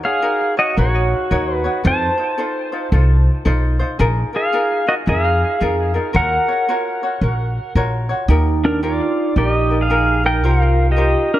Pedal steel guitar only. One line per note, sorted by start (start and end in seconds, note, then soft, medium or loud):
0.05 0.55 G#4 medium
0.05 0.54 F5 medium
0.59 0.77 F#4 medium
0.59 0.78 D#5 medium
0.79 1.81 F#4 medium
0.79 1.55 C#5 medium
1.55 1.87 B4 medium
1.87 2.89 C5 medium
1.87 2.89 A5 medium
4.36 4.85 G#4 medium
4.36 4.90 F5 medium
4.89 4.94 F#4 medium
4.89 4.94 D#5 medium
5.09 6.12 G#4 medium
5.09 6.16 F5 medium
6.16 7.73 A#4 medium
6.16 7.72 F#5 medium
8.65 8.83 D4 medium
8.65 8.85 A#4 medium
8.83 9.33 F4 medium
8.83 9.38 D5 medium
9.38 9.78 G4 medium
9.38 9.49 D5 medium
9.49 9.83 D#5 medium
9.81 10.22 G#4 medium
9.81 10.26 F5 medium
10.26 10.44 A#4 medium
10.26 10.46 G5 medium
10.45 10.86 A#4 medium
10.45 10.63 F#5 medium
10.63 10.90 F5 medium
10.91 11.31 G4 medium
10.91 11.35 D#5 medium
11.34 11.39 D4 medium
11.34 11.39 A#4 medium